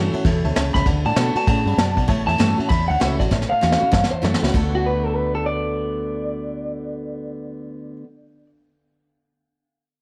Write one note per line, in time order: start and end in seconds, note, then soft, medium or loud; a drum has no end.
0.00 0.12 G2 loud
0.00 0.23 A2 loud
0.00 0.13 E3 loud
0.00 0.13 A3 loud
0.00 0.13 C#4 medium
0.00 0.11 F#4 loud
0.00 0.54 A4 loud
0.12 0.25 C#4 medium
0.12 0.24 F#4 medium
0.12 0.20 C#5 medium
0.12 0.20 E5 medium
0.12 0.21 A5 medium
0.12 muted fretless electric bass stroke medium
0.12 ride medium
0.25 0.42 E2 medium
0.25 0.55 B2 loud
0.25 0.36 C#5 medium
0.25 0.36 E5 medium
0.25 0.36 A5 medium
0.25 kick loud
0.25 ride medium
0.44 0.55 D2 medium
0.44 0.51 C#5 medium
0.44 0.51 E5 medium
0.44 0.51 A5 loud
0.44 ride medium
0.56 0.74 C#2 medium
0.56 0.85 C#3 medium
0.56 0.67 C#5 loud
0.56 0.67 E5 loud
0.56 0.67 A5 loud
0.56 snare loud
0.56 ride medium
0.74 0.86 C#2 medium
0.74 0.82 C#5 medium
0.74 0.82 E5 medium
0.74 0.82 A5 medium
0.74 0.86 B5 loud
0.74 kick medium
0.74 snare soft
0.74 ride medium
0.86 1.04 D2 medium
0.86 1.15 D3 medium
0.86 0.98 D5 medium
0.86 0.98 F#5 medium
0.86 0.98 A5 loud
0.86 kick loud
0.86 ride medium
1.05 1.16 A2 medium
1.05 1.12 D5 loud
1.05 1.12 F#5 medium
1.05 1.12 A5 loud
1.05 1.35 A5 loud
1.05 ride medium
1.16 1.34 B2 loud
1.16 1.35 D3 medium
1.16 1.35 A3 loud
1.16 1.35 B3 loud
1.16 1.34 F#4 loud
1.16 1.29 F#5 medium
1.16 1.29 A5 medium
1.16 snare loud
1.16 ride medium
1.35 1.48 B3 soft
1.35 1.47 F#4 medium
1.35 1.43 D5 medium
1.35 1.43 F#5 medium
1.35 1.47 A5 medium
1.35 1.43 A5 medium
1.35 muted fretless electric bass stroke medium
1.35 ride medium
1.47 1.65 A2 medium
1.47 1.77 C#3 loud
1.47 1.59 D5 medium
1.47 1.60 F#5 medium
1.47 2.07 A5 loud
1.47 1.60 A5 medium
1.47 kick loud
1.47 ride medium
1.66 1.77 G2 loud
1.66 1.74 D5 medium
1.66 1.74 F#5 medium
1.66 1.74 B5 medium
1.66 ride medium
1.77 1.95 F#2 medium
1.77 2.07 B2 loud
1.77 1.90 D5 loud
1.77 1.90 F#5 medium
1.77 1.90 A5 loud
1.77 snare loud
1.77 ride medium
1.97 2.08 B1 medium
1.97 2.04 D5 medium
1.97 2.04 F#5 medium
1.97 2.04 A5 loud
1.97 kick medium
1.97 ride medium
2.08 2.26 A1 medium
2.08 2.67 A2 loud
2.08 2.20 C#5 loud
2.08 2.20 E5 loud
2.08 2.20 A5 loud
2.08 kick loud
2.08 ride medium
2.27 2.38 E2 medium
2.27 2.35 C#5 loud
2.27 2.35 E5 loud
2.27 2.68 A5 loud
2.27 2.35 A5 loud
2.27 ride medium
2.38 2.57 G2 medium
2.38 2.57 E3 loud
2.38 2.58 A3 medium
2.38 2.58 C#4 loud
2.38 2.56 F#4 loud
2.38 2.51 C#5 medium
2.38 2.51 E5 medium
2.38 2.51 A5 medium
2.38 snare loud
2.38 ride medium
2.57 2.70 C#4 medium
2.57 2.69 F#4 medium
2.57 2.65 C#5 medium
2.57 2.66 E5 medium
2.57 2.66 A5 medium
2.57 muted fretless electric bass stroke medium
2.57 ride medium
2.69 3.29 E2 loud
2.69 2.88 E2 medium
2.69 2.81 C#5 medium
2.69 2.82 E5 medium
2.69 2.82 A5 medium
2.69 2.88 B5 loud
2.69 kick loud
2.69 ride medium
2.88 3.00 D2 loud
2.88 2.96 C#5 medium
2.88 2.96 E5 medium
2.88 3.01 F#5 loud
2.88 2.96 A5 medium
2.88 ride medium
3.00 3.19 C#2 medium
3.00 3.19 E3 medium
3.00 3.19 A3 medium
3.00 3.19 C#4 loud
3.00 3.19 F#4 medium
3.00 3.12 C#5 loud
3.00 3.12 E5 medium
3.00 3.19 E5 loud
3.00 3.12 B5 loud
3.00 snare loud
3.00 ride medium
3.19 3.31 A1 medium
3.19 3.32 C#4 soft
3.19 3.31 F#4 medium
3.19 3.27 C#5 medium
3.19 3.31 D5 loud
3.19 3.27 E5 medium
3.19 3.27 A5 medium
3.19 kick medium
3.19 snare soft
3.19 ride medium
3.31 3.44 A1 medium
3.31 3.90 A2 loud
3.31 3.43 C#5 medium
3.31 3.43 E5 medium
3.31 3.43 A5 loud
3.31 kick loud
3.31 snare medium
3.42 snare medium
3.50 3.58 C#5 medium
3.50 3.58 E5 medium
3.50 4.10 F5 loud
3.50 3.58 A5 medium
3.50 muted fretless electric bass stroke medium
3.61 3.75 E2 loud
3.61 3.80 E3 medium
3.61 3.81 A3 medium
3.61 3.80 C#4 medium
3.61 3.79 F#4 medium
3.61 3.74 C#5 medium
3.61 3.74 E5 medium
3.61 3.74 F#5 medium
3.61 snare medium
3.72 snare medium
3.80 3.92 C#4 medium
3.80 3.92 F#4 medium
3.80 3.88 C#5 medium
3.80 3.89 E5 medium
3.80 3.89 B5 medium
3.80 muted fretless electric bass stroke medium
3.92 4.51 E2 loud
3.92 4.05 G2 medium
3.92 4.04 C#5 loud
3.92 4.04 E5 loud
3.92 4.04 A5 loud
3.92 kick loud
3.92 snare medium
4.04 snare medium
4.11 4.24 C5 medium
4.11 4.19 C#5 medium
4.11 4.19 E5 medium
4.11 4.19 A5 medium
4.11 muted fretless electric bass stroke medium
4.22 4.36 F#2 medium
4.22 4.41 E3 medium
4.22 4.41 A3 loud
4.22 4.42 C#4 medium
4.22 4.41 F#4 medium
4.22 4.42 A4 medium
4.22 4.35 C#5 medium
4.22 4.35 E5 medium
4.22 4.35 A5 medium
4.22 snare medium
4.34 snare loud
4.42 4.50 C#2 medium
4.42 4.54 C#4 soft
4.42 4.53 F#4 medium
4.42 4.54 F#4 loud
4.42 4.49 C#5 medium
4.42 4.50 E5 medium
4.42 4.50 B5 medium
4.42 snare medium
4.53 7.94 D2 medium
4.53 8.03 D3 medium
4.53 8.04 A3 medium
4.53 8.05 B3 medium
4.53 8.05 F#4 loud
4.53 7.94 F#5 medium
4.53 kick loud
4.53 crash medium
4.57 7.96 A5 medium
4.75 4.85 F#4 medium
4.86 5.06 B4 medium
5.06 5.16 A4 medium
5.16 5.34 B4 medium
5.35 5.46 A4 medium
5.46 8.46 D5 medium